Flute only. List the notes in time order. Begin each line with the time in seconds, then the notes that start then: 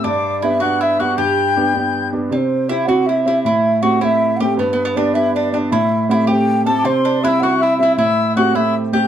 0.05 D5
0.44 E5
0.62 F#5
0.82 E5
1.01 F#5
1.18 G5
2.32 D5
2.37 C5
2.69 E5
2.82 E5 F#5
3.06 E5
3.24 E5
3.43 E5
3.82 F#5
4.00 E5 F#5
4.36 F#5 G5
4.58 B4
4.96 D5
5.14 E5
5.34 D5
5.52 D5
5.71 E5
6.09 F#5
6.14 E5
6.28 G5
6.66 A5
6.85 C5
7.23 E5
7.40 F#5
7.58 E5
7.78 E5
7.96 E5
8.35 F#5
8.56 E5
8.94 G5